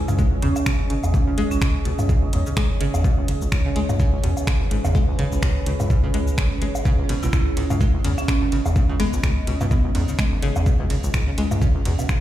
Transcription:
Already playing: ambient pad C#4 G#4 D#5
0.08 analog synth bass C#2, synth pluck C#3, mid tom, cabasa, low woodblock
0.19 synth pluck G#3, kick, cabasa
0.32 analog synth bass C#2
0.42 analog synth bass E2, synth pluck C#3, marimba C#4, closed hi-hat
0.56 marimba C#4, cabasa, low woodblock
0.66 synth pluck B2, finger snap, kick, cabasa
0.80 analog synth bass G#1
0.90 analog synth bass G#1, synth pluck C#3, closed hi-hat
1.04 analog synth bass E2, cabasa, low woodblock
1.14 synth pluck G#2, kick, cabasa
1.27 analog synth bass C#2, synth pluck C#3
1.38 analog synth bass G#1, synth pluck G#3, closed hi-hat
1.51 analog synth bass C#2, marimba C#4, cabasa
1.62 analog synth bass C#2, synth pluck C#3, marimba C#4, finger snap, kick, cabasa
1.85 analog synth bass C#2, synth pluck B2, closed hi-hat
1.99 analog synth bass C#2, mid tom, cabasa, low woodblock
2.09 synth pluck C#3, kick, cabasa
2.23 analog synth bass C#2
2.33 analog synth bass E2, synth pluck G#2, closed hi-hat
2.46 synth pluck C#3, cabasa
2.57 synth pluck G#3, finger snap, kick, cabasa
2.70 analog synth bass G#1
2.81 analog synth bass G#1, synth pluck C#3, closed hi-hat
2.94 analog synth bass E2, cabasa, low woodblock
3.04 synth pluck B2, kick, cabasa
3.18 analog synth bass C#2
3.28 analog synth bass G#1, synth pluck C#3, closed hi-hat
3.35 ambient pad B4
3.42 analog synth bass C#2, cabasa
3.52 analog synth bass C#2, synth pluck G#2, finger snap, kick, cabasa
3.65 synth pluck C#3
3.76 analog synth bass C#2, synth pluck G#3, closed hi-hat
3.89 analog synth bass C#2, mid tom, cabasa, low woodblock
4.00 synth pluck C#3, kick, cabasa
4.13 analog synth bass C#2
4.23 analog synth bass E2, synth pluck B2, closed hi-hat
4.37 cabasa, low woodblock
4.47 synth pluck C#3, finger snap, kick, cabasa
4.61 analog synth bass G#1
4.71 analog synth bass G#1, synth pluck G#2, closed hi-hat
4.85 analog synth bass E2, synth pluck C#3, cabasa, low woodblock
4.95 synth pluck G#3, kick, cabasa
5.08 analog synth bass C#2
5.19 analog synth bass G#1, synth pluck C#3, closed hi-hat
5.32 analog synth bass C#2, cabasa
5.43 analog synth bass C#2, synth pluck B2, finger snap, kick, closed hi-hat, cabasa
5.66 analog synth bass C#2, synth pluck C#3, closed hi-hat
5.80 analog synth bass C#2, mid tom, cabasa, low woodblock
5.90 synth pluck G#2, kick, cabasa
6.04 analog synth bass C#2, synth pluck C#3
6.14 analog synth bass C#2, synth pluck G#3, closed hi-hat
6.28 cabasa
6.38 synth pluck C#3, finger snap, kick, cabasa
6.62 analog synth bass G#1, synth pluck G#3, closed hi-hat
6.75 cabasa, low woodblock
6.85 synth pluck C#3, kick, cabasa
6.99 analog synth bass C#2
7.09 analog synth bass G#1, synth pluck B2, closed hi-hat, ride
7.16 ambient pad D#5
7.23 analog synth bass C#2, synth pluck B2, marimba E4, cabasa
7.33 analog synth bass C#2, synth pluck C#3, marimba E4, finger snap, kick, cabasa
7.57 analog synth bass C#2, synth pluck G#2, closed hi-hat, ride
7.70 analog synth bass C#2, synth pluck C#3, mid tom, cabasa, low woodblock
7.81 synth pluck G#3, kick, cabasa
7.94 analog synth bass C#2
8.04 analog synth bass E2, synth pluck C#3, closed hi-hat, ride
8.18 marimba C#4, cabasa, low woodblock
8.28 synth pluck B2, marimba C#4, finger snap, kick, cabasa
8.42 analog synth bass G#1, synth pluck B2
8.52 analog synth bass G#1, synth pluck C#3, closed hi-hat, ride
8.66 analog synth bass E2, cabasa, low woodblock
8.76 synth pluck G#2, kick, cabasa
8.89 analog synth bass C#2, synth pluck C#3
9.00 analog synth bass G#1, synth pluck G#3, marimba B3, closed hi-hat, ride
9.13 analog synth bass C#2, cabasa
9.23 analog synth bass C#2, synth pluck C#3, finger snap, kick, cabasa
9.47 analog synth bass C#2, synth pluck B2, closed hi-hat, ride
9.61 analog synth bass C#2, synth pluck B2, mid tom, cabasa, low woodblock
9.71 synth pluck C#3, marimba B3, kick, cabasa
9.85 analog synth bass C#2
9.95 analog synth bass E2, synth pluck G#2, closed hi-hat, ride
10.08 synth pluck C#3, cabasa
10.19 synth pluck G#3, finger snap, kick, cabasa
10.32 analog synth bass G#1
10.42 analog synth bass G#1, synth pluck C#3, closed hi-hat, ride
10.56 analog synth bass E2, cabasa, low woodblock
10.66 synth pluck B2, kick, cabasa
10.80 analog synth bass C#2, synth pluck B2
10.90 analog synth bass G#1, synth pluck C#3, closed hi-hat, ride
10.97 ambient pad F#5
11.04 analog synth bass C#2, cabasa
11.14 analog synth bass C#2, synth pluck G#2, finger snap, kick, cabasa
11.28 synth pluck C#3
11.38 analog synth bass C#2, synth pluck G#3, closed hi-hat, ride
11.51 analog synth bass C#2, mid tom, cabasa, low woodblock
11.62 synth pluck C#3, kick, cabasa
11.75 analog synth bass C#2
11.85 analog synth bass E2, synth pluck B2, closed hi-hat, ride
11.99 synth pluck B2, cabasa, low woodblock
12.09 synth pluck C#3, finger snap, kick, cabasa

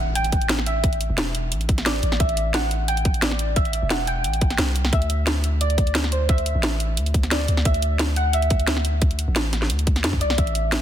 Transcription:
Already playing: 808-style bass A1, synth pluck F#5, impact
0.15 synth pluck G5, closed hi-hat
0.24 closed hi-hat
0.32 kick, closed hi-hat
0.41 closed hi-hat
0.49 snare, closed hi-hat
0.59 snare
0.66 synth pluck E5, closed hi-hat
0.84 kick, closed hi-hat
0.93 closed hi-hat
1.01 closed hi-hat
1.10 808-style bass E1
1.18 snare, closed hi-hat
1.35 closed hi-hat
1.52 808-style bass A1, closed hi-hat
1.61 closed hi-hat
1.69 kick, closed hi-hat
1.78 snare, closed hi-hat
1.86 synth pluck D5, snare, closed hi-hat
2.03 808-style bass A1, closed hi-hat
2.12 snare
2.20 808-style bass A1, synth pluck E5, kick, closed hi-hat
2.29 closed hi-hat
2.37 closed hi-hat
2.54 synth pluck F#5, snare, closed hi-hat
2.71 closed hi-hat
2.88 synth pluck G5, closed hi-hat
2.97 closed hi-hat
3.05 kick, closed hi-hat
3.14 closed hi-hat
3.22 synth pluck D5, snare, closed hi-hat
3.31 snare
3.39 closed hi-hat
3.56 synth pluck E5, kick, closed hi-hat
3.65 closed hi-hat
3.73 closed hi-hat
3.82 808-style bass E1
3.90 synth pluck F#5, snare, closed hi-hat
4.07 synth pluck G5, closed hi-hat
4.24 808-style bass A1, closed hi-hat
4.33 closed hi-hat
4.41 kick, closed hi-hat
4.50 snare, closed hi-hat
4.58 808-style bass C2, snare, closed hi-hat
4.76 closed hi-hat
4.85 snare
4.93 808-style bass D2, synth pluck E5, kick, closed hi-hat
5.02 closed hi-hat
5.10 closed hi-hat
5.27 snare, closed hi-hat
5.44 closed hi-hat
5.61 synth pluck D5, closed hi-hat
5.70 closed hi-hat
5.78 kick, closed hi-hat
5.87 closed hi-hat
5.95 snare, closed hi-hat
6.04 snare
6.12 synth pluck C5, closed hi-hat
6.29 synth pluck E5, kick, closed hi-hat
6.38 closed hi-hat
6.46 closed hi-hat
6.55 808-style bass A1
6.63 snare, closed hi-hat
6.80 closed hi-hat
6.97 808-style bass D2, closed hi-hat
7.06 closed hi-hat
7.14 kick, closed hi-hat
7.23 snare, closed hi-hat
7.31 synth pluck D5, snare, closed hi-hat
7.48 808-style bass D2, closed hi-hat
7.57 snare
7.65 808-style bass D2, synth pluck E5, kick, closed hi-hat
7.74 closed hi-hat
7.82 closed hi-hat
7.99 snare, closed hi-hat
8.16 synth pluck F#5, closed hi-hat
8.33 synth pluck E5, closed hi-hat
8.42 closed hi-hat
8.50 kick, closed hi-hat
8.60 closed hi-hat
8.67 snare, closed hi-hat
8.77 snare
8.85 closed hi-hat
9.02 kick, closed hi-hat
9.11 closed hi-hat
9.19 closed hi-hat
9.28 808-style bass A1
9.36 snare, closed hi-hat
9.53 snare, closed hi-hat
9.62 snare
9.70 808-style bass D2, closed hi-hat
9.79 closed hi-hat
9.87 kick, closed hi-hat
9.96 snare, closed hi-hat
10.04 808-style bass F#2, snare, closed hi-hat
10.13 kick
10.21 808-style bass C2, synth pluck D5, closed hi-hat
10.30 snare
10.38 808-style bass A1, synth pluck E5, kick, closed hi-hat
10.47 closed hi-hat
10.55 closed hi-hat
10.72 snare, closed hi-hat

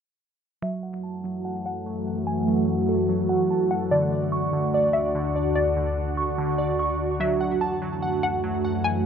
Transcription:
0.62 ambient pad F#2 E3 A3 F#4, synth keys F#3, synth pluck E5
0.83 synth keys F#5
1.03 synth keys A5
1.24 synth keys F#3
1.45 synth keys F#5
1.66 synth pluck F#5
1.86 synth keys F#3
2.07 synth keys F#5
2.27 synth pluck G#5
2.48 synth keys F#3
2.89 synth keys A4
3.09 synth keys F#3
3.29 synth keys F#5
3.50 synth keys A5
3.71 synth pluck F#5
3.91 ambient pad D2 D3 D4, synth keys D3, synth pluck D5
4.12 synth keys D5
4.32 synth keys C#6
4.53 synth keys D3
4.74 synth keys D5
4.93 synth pluck E5
5.15 synth keys D3
5.36 synth keys D5
5.55 synth pluck D5
5.76 synth keys D3
6.17 synth keys C#6
6.38 synth keys D3
6.58 synth keys D5
6.79 synth keys C#6
7.20 ambient pad F#2 E3 A3, synth keys F#3, synth pluck E5
7.41 synth keys F#5
7.61 synth keys A5
7.82 synth keys F#3
8.02 synth keys F#5
8.23 synth pluck F#5
8.44 synth keys F#3
8.65 synth keys F#5
8.84 synth pluck G#5

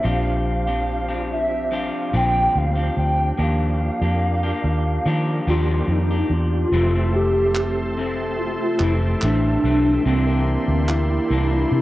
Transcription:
0.00 clean electric guitar F3, tonewheel organ C4 D4 F4
0.04 fingered electric bass A#1, clean electric guitar C4 D4 G4, tonewheel organ G4, soft synth lead F5
0.48 soft synth lead F5
0.67 clean electric guitar F3 C4 D4 G4
1.09 clean electric guitar F3 C4 D4 G4
1.32 soft synth lead E5
1.71 clean electric guitar F3 C4 D4 G4, soft synth lead F5
2.13 fingered electric bass A#1, clean electric guitar A#2 D3 F3 C4 D4 G4, soft synth lead G5
2.56 fingered electric bass D2, soft synth lead F5
2.76 clean electric guitar F3 C4 D4 G4
2.97 fingered electric bass D2, soft synth lead G5
3.36 fingered electric bass D#2, clean electric guitar F3 A#3 D4, tonewheel organ A#3 F4 D5
3.40 clean electric guitar G4, tonewheel organ G4, soft synth lead F5
4.01 fingered electric bass F2, clean electric guitar A#3 D4 G4
4.43 clean electric guitar A#3 D4 G4
4.64 fingered electric bass D#2
5.06 fingered electric bass D#3, clean electric guitar F3 A#3 D4 G4
5.47 fingered electric bass D#2, clean electric guitar D#3 F3 A#3 D4 G4, soft synth lead F4
5.88 fingered electric bass F2, soft synth lead D#4
6.11 clean electric guitar A#3 D4 G4
6.30 fingered electric bass E2, soft synth lead F4
6.70 fingered electric bass F1, clean electric guitar F2 C3 E3 A3 C4, tonewheel organ G#3 C4 E5, analog synth pad A4 E5 A5 C6
6.74 tonewheel organ A3 G4
6.94 clean electric guitar E3 A3 C4
7.15 soft synth lead G4
7.55 clap
7.98 clean electric guitar C3 A3 C4
8.39 soft synth lead F4
8.80 fingered electric bass F1, clean electric guitar C3 E3 A3 C4, soft synth lead E4, clap
9.21 fingered electric bass A1, clean electric guitar C3 E3 A3 C4, soft synth lead D4, clap
9.64 fingered electric bass B1, clean electric guitar E3 A3 C4
10.02 fingered electric bass C2, clean electric guitar C3, tonewheel organ A#3 D4 E4, analog synth pad A#3 D5 C6, soft synth lead C4
10.07 clean electric guitar E3 A#3 D4, tonewheel organ G4
10.27 clean electric guitar E3 A#3 D4
10.68 fingered electric bass D2
10.88 soft synth lead E4, clap
11.30 fingered electric bass C2, clean electric guitar C3 E3 A#3 D4
11.72 fingered electric bass C3

